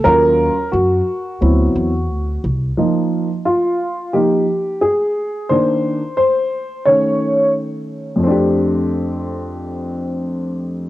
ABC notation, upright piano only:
X:1
M:4/4
L:1/8
Q:"Swing 16ths" 1/4=88
K:Cmix
V:1 name="Upright piano"
B2 _G4- G z | z2 F2 G2 _A2 | c2 c2 ^c2 z2 | [F,,A,CDG]8 |]
V:2 name="Upright piano"
[_G,_DF] z3 [^F,=B,CE] z3 | [F,B,_E] z3 [F,B,E] z3 | [_E,B,D] z3 [E,A,^C]4 | z8 |]